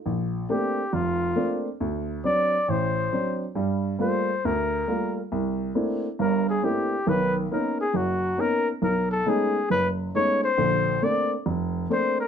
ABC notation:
X:1
M:4/4
L:1/8
Q:"Swing" 1/4=137
K:Bb
V:1 name="Trumpet"
z2 G2 F3 z | z2 d2 c3 z | z2 c2 B3 z | z4 B _A G2 |
=B z ^A _A ^F2 ^A z | B A ^G2 =B z ^c =c- | c2 d z3 c B |]
V:2 name="Grand piano"
B,,,2 [A,B,CD] z F,,,2 [A,B,CD] z | D,,2 [^F,CD] z A,,,2 [F,CD] z | [G,,G,]2 [G,A,B,F] z D,,2 [G,A,B,F] z | C,,2 [A,B,CD=E] z [G,,,G,,]2 [A,B,CDE] z |
[=B,,,^D,]2 [^A,=B,^C^D] z ^F,,,2 [A,B,CD] z | =B,,,2 [^G,A,=B,^C^D] z ^F,,,2 [G,A,B,CD] z | [B,,,D,]2 [A,B,CD] z F,,,2 [A,B,CD] z |]